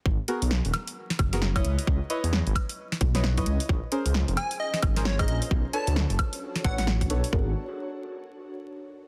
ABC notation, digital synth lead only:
X:1
M:4/4
L:1/16
Q:"Swing 16ths" 1/4=132
K:C#dor
V:1 name="Digital synth lead"
z16 | z16 | z6 g2 d2 z2 c d d z | z2 =a2 z6 f f z4 |
z16 |]